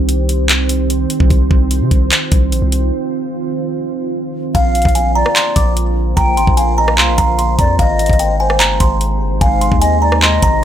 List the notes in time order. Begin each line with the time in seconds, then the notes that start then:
Already playing: C2 D#3 C4 G4 C5
0.09 closed hi-hat
0.29 closed hi-hat
0.49 clap, closed hi-hat
0.69 closed hi-hat
0.90 closed hi-hat
1.10 closed hi-hat
1.20 C2, kick
1.30 C2 F4, kick, closed hi-hat
1.51 C2, kick
1.71 closed hi-hat
1.81 C3
1.91 C2, kick, closed hi-hat
2.12 clap, closed hi-hat
2.32 C2, kick, closed hi-hat
2.52 A#1, closed hi-hat
2.62 C2
2.72 closed hi-hat
4.55 A#1 D3 A#3 F4 C5 F5, kick, closed hi-hat
4.75 closed hi-hat
4.82 A#1, kick, closed hi-hat
4.89 closed hi-hat
4.95 G#5, closed hi-hat
5.15 D5 A#5
5.26 cross-stick
5.36 C6, clap, closed hi-hat
5.56 A#1 D6, kick, closed hi-hat
5.77 closed hi-hat
6.17 A#1 G5 A#5, kick, closed hi-hat
6.37 G#1 C6, closed hi-hat
6.47 A#1, kick
6.57 F5 G#5, closed hi-hat
6.78 D#5 A#5
6.88 cross-stick
6.98 C2 F5 C6, clap
7.08 A#1
7.18 A#1 A#5, kick, closed hi-hat
7.39 C6, closed hi-hat
7.59 F2 D5 A#5, kick, closed hi-hat
7.79 G#1 C3 G#3 D#4 D#5 F5, kick, closed hi-hat
7.99 closed hi-hat
8.06 G#1, kick, closed hi-hat
8.13 closed hi-hat
8.19 G5, closed hi-hat
8.40 C5 G#5
8.50 cross-stick
8.60 G1 A#5, clap, closed hi-hat
8.80 G#1 C6, kick, closed hi-hat
9.01 closed hi-hat
9.21 G1
9.31 G#1
9.41 G#1 F5 G#5, kick, closed hi-hat
9.61 C6, closed hi-hat
9.72 D#2, kick
9.81 D#5 G#5, closed hi-hat
10.02 D5 A#5
10.12 cross-stick
10.22 D#5 C6, clap
10.42 G#1 A#5, kick, closed hi-hat